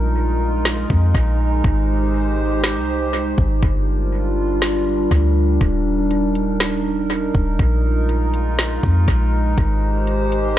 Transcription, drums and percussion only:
0, 0, Header, 1, 2, 480
1, 0, Start_track
1, 0, Tempo, 495868
1, 1590, Time_signature, 4, 2, 24, 8
1, 10249, End_track
2, 0, Start_track
2, 0, Title_t, "Drums"
2, 632, Note_on_c, 9, 38, 118
2, 729, Note_off_c, 9, 38, 0
2, 871, Note_on_c, 9, 36, 103
2, 968, Note_off_c, 9, 36, 0
2, 1109, Note_on_c, 9, 36, 97
2, 1206, Note_off_c, 9, 36, 0
2, 1591, Note_on_c, 9, 36, 116
2, 1688, Note_off_c, 9, 36, 0
2, 2552, Note_on_c, 9, 38, 117
2, 2649, Note_off_c, 9, 38, 0
2, 3271, Note_on_c, 9, 36, 102
2, 3368, Note_off_c, 9, 36, 0
2, 3510, Note_on_c, 9, 36, 110
2, 3607, Note_off_c, 9, 36, 0
2, 4471, Note_on_c, 9, 38, 117
2, 4568, Note_off_c, 9, 38, 0
2, 4948, Note_on_c, 9, 36, 97
2, 5045, Note_off_c, 9, 36, 0
2, 5430, Note_on_c, 9, 36, 111
2, 5431, Note_on_c, 9, 42, 73
2, 5527, Note_off_c, 9, 36, 0
2, 5527, Note_off_c, 9, 42, 0
2, 5910, Note_on_c, 9, 42, 68
2, 6007, Note_off_c, 9, 42, 0
2, 6150, Note_on_c, 9, 42, 75
2, 6246, Note_off_c, 9, 42, 0
2, 6391, Note_on_c, 9, 38, 115
2, 6392, Note_on_c, 9, 42, 79
2, 6488, Note_off_c, 9, 38, 0
2, 6489, Note_off_c, 9, 42, 0
2, 6870, Note_on_c, 9, 42, 64
2, 6966, Note_off_c, 9, 42, 0
2, 7111, Note_on_c, 9, 36, 95
2, 7208, Note_off_c, 9, 36, 0
2, 7350, Note_on_c, 9, 36, 110
2, 7350, Note_on_c, 9, 42, 74
2, 7447, Note_off_c, 9, 36, 0
2, 7447, Note_off_c, 9, 42, 0
2, 7830, Note_on_c, 9, 42, 62
2, 7927, Note_off_c, 9, 42, 0
2, 8070, Note_on_c, 9, 42, 74
2, 8166, Note_off_c, 9, 42, 0
2, 8312, Note_on_c, 9, 38, 108
2, 8312, Note_on_c, 9, 42, 77
2, 8409, Note_off_c, 9, 38, 0
2, 8409, Note_off_c, 9, 42, 0
2, 8551, Note_on_c, 9, 36, 103
2, 8648, Note_off_c, 9, 36, 0
2, 8788, Note_on_c, 9, 36, 96
2, 8790, Note_on_c, 9, 42, 61
2, 8885, Note_off_c, 9, 36, 0
2, 8887, Note_off_c, 9, 42, 0
2, 9270, Note_on_c, 9, 36, 114
2, 9270, Note_on_c, 9, 42, 75
2, 9367, Note_off_c, 9, 36, 0
2, 9367, Note_off_c, 9, 42, 0
2, 9750, Note_on_c, 9, 42, 67
2, 9847, Note_off_c, 9, 42, 0
2, 9990, Note_on_c, 9, 42, 75
2, 10087, Note_off_c, 9, 42, 0
2, 10249, End_track
0, 0, End_of_file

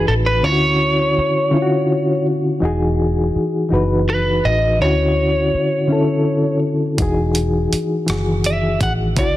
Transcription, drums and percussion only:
0, 0, Header, 1, 2, 480
1, 0, Start_track
1, 0, Key_signature, 4, "major"
1, 0, Tempo, 727273
1, 287, Time_signature, 6, 3, 24, 8
1, 6183, End_track
2, 0, Start_track
2, 0, Title_t, "Drums"
2, 4608, Note_on_c, 9, 42, 64
2, 4609, Note_on_c, 9, 36, 97
2, 4674, Note_off_c, 9, 42, 0
2, 4675, Note_off_c, 9, 36, 0
2, 4850, Note_on_c, 9, 42, 42
2, 4916, Note_off_c, 9, 42, 0
2, 5099, Note_on_c, 9, 42, 46
2, 5165, Note_off_c, 9, 42, 0
2, 5332, Note_on_c, 9, 42, 67
2, 5345, Note_on_c, 9, 37, 92
2, 5398, Note_off_c, 9, 42, 0
2, 5411, Note_off_c, 9, 37, 0
2, 5572, Note_on_c, 9, 42, 51
2, 5638, Note_off_c, 9, 42, 0
2, 5812, Note_on_c, 9, 36, 73
2, 5813, Note_on_c, 9, 42, 43
2, 5878, Note_off_c, 9, 36, 0
2, 5879, Note_off_c, 9, 42, 0
2, 6049, Note_on_c, 9, 42, 65
2, 6050, Note_on_c, 9, 36, 101
2, 6115, Note_off_c, 9, 42, 0
2, 6116, Note_off_c, 9, 36, 0
2, 6183, End_track
0, 0, End_of_file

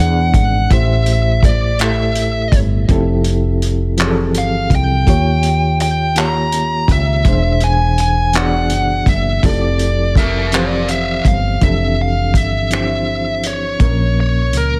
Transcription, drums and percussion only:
0, 0, Header, 1, 2, 480
1, 0, Start_track
1, 0, Key_signature, -1, "major"
1, 0, Tempo, 727273
1, 466, Time_signature, 6, 3, 24, 8
1, 9765, End_track
2, 0, Start_track
2, 0, Title_t, "Drums"
2, 222, Note_on_c, 9, 36, 82
2, 225, Note_on_c, 9, 42, 57
2, 288, Note_off_c, 9, 36, 0
2, 291, Note_off_c, 9, 42, 0
2, 466, Note_on_c, 9, 36, 112
2, 466, Note_on_c, 9, 42, 64
2, 532, Note_off_c, 9, 36, 0
2, 532, Note_off_c, 9, 42, 0
2, 701, Note_on_c, 9, 42, 48
2, 767, Note_off_c, 9, 42, 0
2, 941, Note_on_c, 9, 36, 82
2, 948, Note_on_c, 9, 42, 50
2, 1007, Note_off_c, 9, 36, 0
2, 1014, Note_off_c, 9, 42, 0
2, 1182, Note_on_c, 9, 42, 56
2, 1200, Note_on_c, 9, 39, 94
2, 1248, Note_off_c, 9, 42, 0
2, 1266, Note_off_c, 9, 39, 0
2, 1422, Note_on_c, 9, 42, 59
2, 1488, Note_off_c, 9, 42, 0
2, 1662, Note_on_c, 9, 36, 90
2, 1666, Note_on_c, 9, 42, 58
2, 1728, Note_off_c, 9, 36, 0
2, 1732, Note_off_c, 9, 42, 0
2, 1905, Note_on_c, 9, 36, 111
2, 1907, Note_on_c, 9, 42, 70
2, 1971, Note_off_c, 9, 36, 0
2, 1973, Note_off_c, 9, 42, 0
2, 2141, Note_on_c, 9, 42, 51
2, 2207, Note_off_c, 9, 42, 0
2, 2391, Note_on_c, 9, 42, 50
2, 2457, Note_off_c, 9, 42, 0
2, 2625, Note_on_c, 9, 42, 57
2, 2643, Note_on_c, 9, 39, 94
2, 2691, Note_off_c, 9, 42, 0
2, 2709, Note_off_c, 9, 39, 0
2, 2868, Note_on_c, 9, 42, 52
2, 2934, Note_off_c, 9, 42, 0
2, 3103, Note_on_c, 9, 36, 89
2, 3108, Note_on_c, 9, 42, 54
2, 3169, Note_off_c, 9, 36, 0
2, 3174, Note_off_c, 9, 42, 0
2, 3345, Note_on_c, 9, 36, 112
2, 3349, Note_on_c, 9, 42, 64
2, 3411, Note_off_c, 9, 36, 0
2, 3415, Note_off_c, 9, 42, 0
2, 3584, Note_on_c, 9, 42, 52
2, 3650, Note_off_c, 9, 42, 0
2, 3830, Note_on_c, 9, 42, 55
2, 3896, Note_off_c, 9, 42, 0
2, 4065, Note_on_c, 9, 42, 60
2, 4083, Note_on_c, 9, 39, 91
2, 4131, Note_off_c, 9, 42, 0
2, 4149, Note_off_c, 9, 39, 0
2, 4306, Note_on_c, 9, 42, 54
2, 4372, Note_off_c, 9, 42, 0
2, 4541, Note_on_c, 9, 36, 90
2, 4548, Note_on_c, 9, 42, 56
2, 4607, Note_off_c, 9, 36, 0
2, 4614, Note_off_c, 9, 42, 0
2, 4783, Note_on_c, 9, 36, 111
2, 4784, Note_on_c, 9, 42, 70
2, 4849, Note_off_c, 9, 36, 0
2, 4850, Note_off_c, 9, 42, 0
2, 5020, Note_on_c, 9, 42, 48
2, 5086, Note_off_c, 9, 42, 0
2, 5267, Note_on_c, 9, 42, 53
2, 5333, Note_off_c, 9, 42, 0
2, 5500, Note_on_c, 9, 42, 55
2, 5518, Note_on_c, 9, 39, 88
2, 5566, Note_off_c, 9, 42, 0
2, 5584, Note_off_c, 9, 39, 0
2, 5741, Note_on_c, 9, 42, 55
2, 5807, Note_off_c, 9, 42, 0
2, 5981, Note_on_c, 9, 36, 87
2, 5984, Note_on_c, 9, 42, 57
2, 6047, Note_off_c, 9, 36, 0
2, 6050, Note_off_c, 9, 42, 0
2, 6224, Note_on_c, 9, 36, 113
2, 6227, Note_on_c, 9, 42, 65
2, 6290, Note_off_c, 9, 36, 0
2, 6293, Note_off_c, 9, 42, 0
2, 6464, Note_on_c, 9, 42, 49
2, 6530, Note_off_c, 9, 42, 0
2, 6702, Note_on_c, 9, 36, 90
2, 6710, Note_on_c, 9, 42, 56
2, 6768, Note_off_c, 9, 36, 0
2, 6776, Note_off_c, 9, 42, 0
2, 6944, Note_on_c, 9, 42, 53
2, 6962, Note_on_c, 9, 39, 90
2, 7010, Note_off_c, 9, 42, 0
2, 7028, Note_off_c, 9, 39, 0
2, 7185, Note_on_c, 9, 42, 56
2, 7251, Note_off_c, 9, 42, 0
2, 7423, Note_on_c, 9, 36, 90
2, 7427, Note_on_c, 9, 42, 63
2, 7489, Note_off_c, 9, 36, 0
2, 7493, Note_off_c, 9, 42, 0
2, 7666, Note_on_c, 9, 36, 96
2, 7666, Note_on_c, 9, 42, 57
2, 7732, Note_off_c, 9, 36, 0
2, 7732, Note_off_c, 9, 42, 0
2, 8144, Note_on_c, 9, 36, 78
2, 8151, Note_on_c, 9, 42, 65
2, 8210, Note_off_c, 9, 36, 0
2, 8217, Note_off_c, 9, 42, 0
2, 8387, Note_on_c, 9, 42, 52
2, 8405, Note_on_c, 9, 26, 80
2, 8453, Note_off_c, 9, 42, 0
2, 8471, Note_off_c, 9, 26, 0
2, 8867, Note_on_c, 9, 42, 72
2, 8933, Note_off_c, 9, 42, 0
2, 9107, Note_on_c, 9, 36, 107
2, 9108, Note_on_c, 9, 42, 58
2, 9173, Note_off_c, 9, 36, 0
2, 9174, Note_off_c, 9, 42, 0
2, 9591, Note_on_c, 9, 42, 60
2, 9657, Note_off_c, 9, 42, 0
2, 9765, End_track
0, 0, End_of_file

